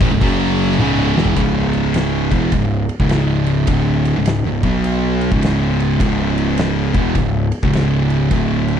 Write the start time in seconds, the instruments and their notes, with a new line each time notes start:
0.01 picked electric bass A1, distorted electric guitar A2 E3, kick, open hi-hat
0.11 picked electric bass C#1, distorted electric guitar C#2 G#2
0.21 picked electric bass F#1, distorted electric guitar F#2 C#3 F#3, kick, open hi-hat
0.58 open hi-hat
0.71 snare
0.79 picked electric bass C#1, distorted electric guitar C#2 G#2 C#3, high tom
1.17 picked electric bass E1, distorted electric guitar E2 B2 E3, snare
1.25 floor tom
1.35 picked electric bass C#1, distorted electric guitar C#2 G#2 C#3, kick, ride
1.73 ride
1.94 snare, ride
2.31 picked electric bass E1, distorted electric guitar E2 B2 E3, kick, ride
2.52 picked electric bass C#1, distorted electric guitar C#2 G#2, kick, ride
2.89 ride
3.00 picked electric bass C#1, distorted electric guitar C#2 G#2 C#3, kick
3.09 snare, ride
3.46 ride
3.67 picked electric bass D1, distorted electric guitar D2 A2 D3, kick, ride
4.05 ride
4.15 picked electric bass C#1, distorted electric guitar C#2 G#2
4.25 snare, ride
4.44 picked electric bass C#1, distorted electric guitar C#2 G#2
4.63 picked electric bass B1, distorted electric guitar B2 F#3 B3, kick, ride
4.84 ride
5.21 ride
5.32 picked electric bass C#1, distorted electric guitar C#2 G#2 C#3, kick
5.42 snare, ride
5.80 ride
5.99 picked electric bass C#1, distorted electric guitar C#2 G#2 C#3, kick, ride
6.38 ride
6.57 snare, ride
6.94 picked electric bass E1, distorted electric guitar E2 B2 E3, kick, ride
7.15 picked electric bass C#1, distorted electric guitar C#2 G#2, kick, ride
7.52 ride
7.63 picked electric bass C#1, distorted electric guitar C#2 G#2 C#3, kick
7.73 snare, ride
8.10 ride
8.31 picked electric bass D1, distorted electric guitar D2 A2 D3, kick, ride
8.68 ride